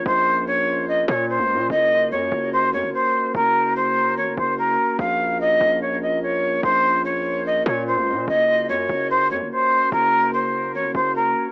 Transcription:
<<
  \new Staff \with { instrumentName = "Flute" } { \time 4/4 \key ges \lydian \tempo 4 = 146 c''4 des''4 ees''8 des''8 c''4 | ees''4 des''4 c''8 des''8 c''4 | bes'4 c''4 des''8 c''8 bes'4 | f''4 ees''4 des''8 ees''8 des''4 |
c''4 des''4 ees''8 des''8 c''4 | ees''4 des''4 c''8 des''8 c''4 | bes'4 c''4 des''8 c''8 bes'4 | }
  \new Staff \with { instrumentName = "Glass harmonica" } { \time 4/4 \key ges \lydian << { <f' bes'>1 | <ges' bes'>1~ | <ges' bes'>1 | <f' bes'>1~ |
<f' bes'>1 | <ges' bes'>1~ | <ges' bes'>1 | } \\ { des'1 | des'1~ | des'1~ | des'1~ |
des'1~ | des'1~ | des'1 | } >> }
  \new Staff \with { instrumentName = "Glass harmonica" } { \time 4/4 \key ges \lydian bes1~ | bes1~ | bes1 | bes1~ |
bes1~ | bes1~ | bes1 | }
  \new Staff \with { instrumentName = "808-style bass" } { \clef bass \time 4/4 \key ges \lydian bes,,2~ bes,,8 bes,8. des,16. bes,16. | ges,,4 ges,8 ges,,4 ges,16 ges,,16 r4 | ges,,2 a,,16 ges,,16 ges,,4 r8 | bes,,4. bes,,2~ bes,,8 |
bes,,2~ bes,,8 bes,8. des,16. bes,16. | ges,,4 ges,8 ges,,4 ges,16 ges,,16 r4 | ges,,2 a,,16 ges,,16 ges,,4 r8 | }
>>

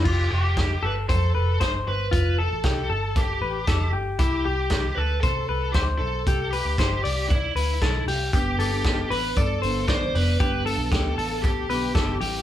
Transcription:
<<
  \new Staff \with { instrumentName = "Clean electric guitar" } { \time 4/4 \key f \lydian \tempo 4 = 116 f'8 g'4 a'8 c''8 b'8 c''4 | f'8 a'8 g'8 a'4 b'8 a'8 g'8 | e'8 g'4 a'8 c''8 b'8 c''4 | g'8 b'8 c''8 d''4 b'8 a'8 g'8 |
g'8 a'4 b'8 d''8 c''8 d''4 | g'8 a'8 g'8 a'4 b'8 a'8 g'8 | }
  \new Staff \with { instrumentName = "Lead electric guitar" } { \time 4/4 \key f \lydian g'8 g'4 b'8 a'4 c''8 b'8~ | b'8 a'4. g'4. r8 | g'8 g'4 b'8 a'4 g'8 a'8~ | a'8 g'4. e'4. r8 |
g'8 g'4 b'8 a'4 c''8 b'8~ | b'8 a'4. g'4. r8 | }
  \new Staff \with { instrumentName = "Steel-string acoustic guitar" } { \time 4/4 \key f \lydian r1 | r1 | r1 | r1 |
<g, d g b d'>8. <g b d'>4.~ <g b d'>16 <d g b d'>8 <d g b d'>8 <d g b d'>8 | <g, d g b d'>8. <g b d'>4.~ <g b d'>16 <d g b d'>8 <d g b d'>8 <e g c' e'>8 | }
  \new Staff \with { instrumentName = "Picked electric bass" } { \clef bass \time 4/4 \key f \lydian f,,8 f,,4 g,,8 f,8 f,,8 r8 g,,8 | f,,8. a,,16 c,8 g,,4 a,,8 f,,8 g,,8 | c,8 c,4 d,8 c8 c,8 d,8 b,,8 | c,8. d,16 g,,8 c,4 d,8 b,,8 c,8 |
g,,8 g,,4 a,,8 g,8 g,,8 a,,8 f,,8 | g,,8. b,,16 d,8 a,,4 b,,8 g,,8 a,,8 | }
  \new DrumStaff \with { instrumentName = "Drums" } \drummode { \time 4/4 <cymc bd>4 <hh bd sn>4 <hh bd>4 <hh bd sn>4 | <hh bd>4 <hh bd sn>4 <hh bd>4 <hh bd sn>4 | <hh bd>4 <hh bd sn>4 <hh bd>4 <hh bd sn>4 | <hh bd>8 hho8 <hh bd sn>8 hho8 <hh bd>8 hho8 <hh bd sn>8 hho8 |
<hh bd>8 hho8 <hh bd sn>8 hho8 <hh bd>8 hho8 <hh bd sn>8 hho8 | <hh bd>8 hho8 <hh bd sn>8 hho8 <hh bd>8 hho8 <hh bd sn>8 hho8 | }
>>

